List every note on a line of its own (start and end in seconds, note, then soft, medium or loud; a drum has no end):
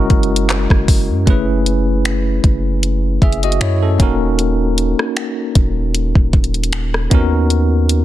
0.00 0.67 F#1 loud
0.00 1.23 G#3 medium
0.00 1.24 C#4 medium
0.00 1.24 E4 medium
0.00 1.25 F#4 medium
0.00 1.26 A#4 medium
0.00 1.29 D#5 medium
0.10 kick loud
0.10 closed hi-hat soft
0.23 closed hi-hat soft
0.36 closed hi-hat medium
0.49 clap loud
0.49 closed hi-hat medium
0.70 1.11 F#1 loud
0.70 kick loud
0.70 cross-stick medium
0.88 kick loud
0.88 open hi-hat medium
1.09 1.26 F#2 loud
1.26 2.40 F#1 loud
1.26 3.95 A3 medium
1.26 3.18 C#4 medium
1.26 3.18 E4 medium
1.26 3.19 G#4 medium
1.26 kick loud
1.26 closed hi-hat medium
1.30 3.20 B4 medium
1.66 closed hi-hat medium
2.05 finger snap loud
2.05 closed hi-hat medium
2.44 3.19 F#1 medium
2.44 kick medium
2.44 closed hi-hat medium
2.83 closed hi-hat medium
3.22 3.59 F#1 medium
3.22 3.43 G#4 medium
3.22 3.42 E5 medium
3.22 kick medium
3.22 closed hi-hat soft
3.32 closed hi-hat soft
3.43 3.61 F#4 medium
3.43 3.60 D#5 medium
3.43 closed hi-hat soft
3.52 closed hi-hat medium
3.61 3.98 F#2 loud
3.61 3.82 E4 medium
3.61 3.81 C#5 medium
3.61 finger snap loud
3.61 closed hi-hat medium
3.83 3.98 C#4 medium
3.83 4.19 A4 medium
3.98 4.95 D#1 loud
3.98 7.07 A#3 medium
3.98 7.07 C#4 medium
3.98 7.08 D#4 medium
3.98 7.08 F#4 medium
3.98 kick loud
3.98 closed hi-hat medium
4.03 7.09 A#4 medium
4.39 closed hi-hat medium
4.78 closed hi-hat medium
4.99 cross-stick medium
5.17 finger snap loud
5.17 closed hi-hat medium
5.55 6.13 D#1 loud
5.55 kick medium
5.55 closed hi-hat medium
5.95 closed hi-hat medium
6.15 6.33 D#1 loud
6.15 kick medium
6.33 7.08 D#1 loud
6.33 kick medium
6.33 closed hi-hat soft
6.44 closed hi-hat soft
6.54 closed hi-hat soft
6.64 closed hi-hat medium
6.73 finger snap loud
6.73 closed hi-hat medium
6.94 cross-stick medium
7.10 8.05 D#2 loud
7.10 8.05 B3 medium
7.10 8.05 C#4 medium
7.10 8.05 D#4 medium
7.10 8.05 F#4 medium
7.10 kick loud
7.10 closed hi-hat medium
7.14 8.05 A#4 medium
7.50 closed hi-hat medium
7.89 closed hi-hat medium